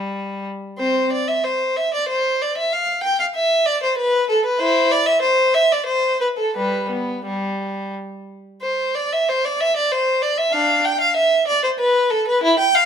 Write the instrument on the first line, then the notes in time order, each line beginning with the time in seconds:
violin
Already playing: G3
0.78 C4 C5
1.12 D5
1.28 E5
1.44 C5
1.76 E5
1.94 D5
2.09 C5
2.42 D5
2.57 E5
2.73 F5
3.03 G5
3.19 F5
3.34 E5
3.66 D5
3.83 C5
3.98 B4
4.30 A4
4.45 B4
4.59 E4 C5
4.91 D5
5.06 E5
5.22 C5
5.54 E5
5.72 D5
5.86 C5
6.21 B4
6.37 A4
6.55 G3 B4
6.90 B3
7.26 G3
8.62 C5
8.95 D5
9.12 E5
9.29 C5
9.45 D5
9.60 E5
9.76 D5
9.92 C5
10.22 D5
10.38 E5
10.53 D4 F5
10.85 G5
11.00 F5
11.16 E5
11.47 D5
11.64 C5
11.79 B4
12.10 A4
12.28 B4
12.43 E4
12.59 G5
12.75 F5